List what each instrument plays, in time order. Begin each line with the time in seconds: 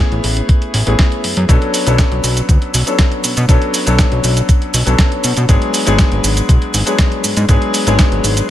Already playing: grand piano A3 B3 C#4 E4 G#4
0.12 analog synth bass A1, closed hi-hat
0.24 analog synth bass A1, open hi-hat
0.37 closed hi-hat
0.49 kick, closed hi-hat
0.62 closed hi-hat
0.74 analog synth bass A1, open hi-hat
0.86 analog synth bass A1, grand piano A3 B3 C#4 E4 G#4, closed hi-hat
0.99 kick, snare, closed hi-hat
1.12 closed hi-hat
1.24 analog synth bass F#2, open hi-hat
1.37 analog synth bass F#2, closed hi-hat
1.49 analog synth bass B1, grand piano F#3 B3 C#4 D4 A4, kick, closed hi-hat, shaker
1.62 closed hi-hat
1.74 open hi-hat, shaker
1.86 analog synth bass B1, grand piano F#3 B3 C#4 D4 A4, closed hi-hat, shaker
1.98 kick, snare, closed hi-hat, shaker
2.12 analog synth bass B1, closed hi-hat
2.24 analog synth bass B1, open hi-hat, shaker
2.37 closed hi-hat, shaker
2.49 analog synth bass D2, kick, closed hi-hat, shaker
2.62 closed hi-hat
2.74 analog synth bass B1, open hi-hat, shaker
2.86 grand piano F#3 B3 C#4 D4 A4, closed hi-hat, shaker
2.99 kick, snare, closed hi-hat, shaker
3.12 closed hi-hat
3.24 analog synth bass B2, open hi-hat, shaker
3.37 analog synth bass B2, closed hi-hat, shaker
3.48 analog synth bass B1, grand piano F#3 B3 C#4 D4 A4, kick, closed hi-hat, shaker
3.62 closed hi-hat
3.74 open hi-hat, shaker
3.86 analog synth bass B1, grand piano F#3 B3 C#4 D4 A4, closed hi-hat, shaker
3.99 kick, snare, closed hi-hat, shaker
4.12 analog synth bass B1, closed hi-hat
4.24 analog synth bass B1, open hi-hat, shaker
4.37 closed hi-hat, shaker
4.49 kick, closed hi-hat, shaker
4.62 closed hi-hat
4.74 analog synth bass B1, open hi-hat, shaker
4.86 analog synth bass B1, grand piano F#3 B3 C#4 D4 A4, closed hi-hat, shaker
4.99 kick, snare, closed hi-hat, shaker
5.12 closed hi-hat
5.24 analog synth bass B2, open hi-hat, shaker
5.37 analog synth bass B2, closed hi-hat, shaker
5.48 analog synth bass G#1, grand piano F#3 G#3 B3 D4 G#4, kick, closed hi-hat, shaker
5.62 closed hi-hat
5.74 open hi-hat, shaker
5.86 analog synth bass G#1, grand piano F#3 G#3 B3 D4 G#4, closed hi-hat, shaker
5.99 kick, snare, closed hi-hat, shaker
6.12 analog synth bass G#1, closed hi-hat
6.24 analog synth bass G#1, open hi-hat, shaker
6.37 closed hi-hat, shaker
6.49 analog synth bass B1, kick, closed hi-hat, shaker
6.62 closed hi-hat
6.74 analog synth bass G#1, open hi-hat, shaker
6.86 grand piano F#3 G#3 B3 D4 G#4, closed hi-hat, shaker
6.99 kick, snare, closed hi-hat, shaker
7.12 closed hi-hat
7.24 analog synth bass G#2, open hi-hat, shaker
7.37 analog synth bass G#2, closed hi-hat, shaker
7.48 analog synth bass G#1, grand piano F#3 G#3 B3 D4 G#4, kick, closed hi-hat, shaker
7.62 closed hi-hat
7.74 open hi-hat, shaker
7.86 analog synth bass G#1, grand piano F#3 G#3 B3 D4 G#4, closed hi-hat, shaker
7.99 kick, snare, closed hi-hat, shaker
8.12 analog synth bass G#1, closed hi-hat
8.24 analog synth bass G#1, open hi-hat, shaker
8.37 closed hi-hat, shaker